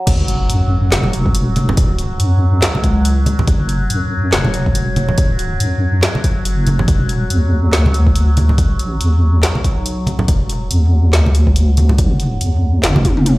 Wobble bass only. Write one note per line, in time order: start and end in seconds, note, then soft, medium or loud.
0.07 0.48 F#1 loud
0.49 0.91 F#2 loud
0.92 2.18 E1 loud
2.20 2.61 F#2 loud
2.62 3.46 C#2 loud
3.48 3.89 F#1 loud
3.90 4.31 F#2 loud
4.33 5.59 E1 loud
5.60 6.01 F#2 loud
6.45 6.86 F#1 loud
6.88 7.29 E1 loud
7.30 7.72 E2 loud
7.73 8.74 D2 loud
8.74 8.99 B1 loud
9.01 9.42 E2 loud
9.43 10.27 B1 loud
10.28 10.69 E1 loud
10.71 11.12 E2 loud
11.13 12.40 D2 loud
12.41 12.82 E2 medium
12.83 13.38 F#1 loud